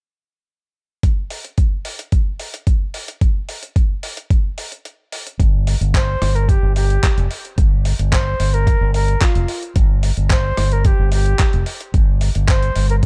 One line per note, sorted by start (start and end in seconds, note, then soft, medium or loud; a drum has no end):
1.03 kick loud
1.03 closed hi-hat soft
1.30 open hi-hat medium
1.44 closed hi-hat medium
1.58 kick loud
1.58 closed hi-hat soft
1.85 open hi-hat medium
1.99 closed hi-hat medium
2.12 kick loud
2.12 closed hi-hat soft
2.40 open hi-hat medium
2.54 closed hi-hat medium
2.67 kick loud
2.67 closed hi-hat soft
2.94 open hi-hat medium
3.08 closed hi-hat medium
3.21 kick loud
3.21 closed hi-hat soft
3.49 open hi-hat loud
3.63 closed hi-hat medium
3.76 kick loud
3.76 closed hi-hat soft
4.03 open hi-hat loud
4.17 closed hi-hat medium
4.30 kick loud
4.30 closed hi-hat soft
4.58 open hi-hat loud
4.72 closed hi-hat medium
4.85 closed hi-hat soft
5.12 open hi-hat loud
5.27 closed hi-hat medium
5.40 5.74 G1 medium
5.40 kick loud
5.40 closed hi-hat medium
5.67 open hi-hat loud
5.81 6.15 G1 medium
5.81 closed hi-hat medium
5.94 6.37 C5 loud
5.94 kick loud
5.94 clap loud
5.94 closed hi-hat medium
6.22 6.55 G1 medium
6.22 cross-stick medium
6.22 open hi-hat medium
6.35 6.50 A#4 medium
6.35 closed hi-hat medium
6.49 6.76 G4 medium
6.49 kick loud
6.49 closed hi-hat medium
6.63 6.96 G1 medium
6.76 7.27 G4 medium
6.76 open hi-hat loud
6.90 closed hi-hat medium
7.03 kick loud
7.03 clap loud
7.03 closed hi-hat medium
7.17 7.26 F1 medium
7.17 closed hi-hat soft
7.31 open hi-hat medium
7.45 closed hi-hat medium
7.58 7.92 G1 medium
7.58 kick loud
7.58 closed hi-hat medium
7.85 open hi-hat loud
7.99 8.33 G1 medium
7.99 closed hi-hat medium
8.12 8.55 C5 loud
8.12 kick loud
8.12 clap loud
8.12 closed hi-hat medium
8.40 8.74 G1 medium
8.40 open hi-hat loud
8.54 8.94 A#4 loud
8.54 closed hi-hat soft
8.67 kick loud
8.67 closed hi-hat medium
8.81 9.14 G1 medium
8.94 9.23 A#4 medium
8.94 open hi-hat loud
9.08 closed hi-hat medium
9.21 9.63 F4 medium
9.21 kick loud
9.21 clap loud
9.21 closed hi-hat medium
9.35 9.44 F1 medium
9.35 closed hi-hat soft
9.48 open hi-hat medium
9.63 closed hi-hat soft
9.76 10.10 G1 medium
9.76 kick loud
9.76 closed hi-hat medium
10.03 open hi-hat loud
10.17 10.51 G1 medium
10.17 closed hi-hat soft
10.30 10.74 C5 loud
10.30 kick loud
10.30 clap loud
10.30 closed hi-hat medium
10.57 10.92 G1 medium
10.57 cross-stick medium
10.57 open hi-hat loud
10.72 10.88 A#4 loud
10.72 closed hi-hat soft
10.85 11.13 G4 medium
10.85 kick loud
10.85 closed hi-hat medium
10.99 11.33 G1 loud
11.12 11.64 G4 medium
11.12 open hi-hat loud
11.26 closed hi-hat soft
11.39 kick loud
11.39 clap loud
11.39 closed hi-hat medium
11.53 11.63 F1 medium
11.53 closed hi-hat soft
11.66 open hi-hat medium
11.81 closed hi-hat soft
11.94 12.28 G1 medium
11.94 kick loud
11.94 closed hi-hat medium
12.21 open hi-hat loud
12.35 12.69 G1 medium
12.35 closed hi-hat soft
12.48 12.87 C5 loud
12.48 kick loud
12.48 clap loud
12.48 closed hi-hat medium
12.62 closed hi-hat soft
12.76 13.06 G1 medium
12.76 open hi-hat medium
12.90 12.96 A#4 medium
12.90 closed hi-hat soft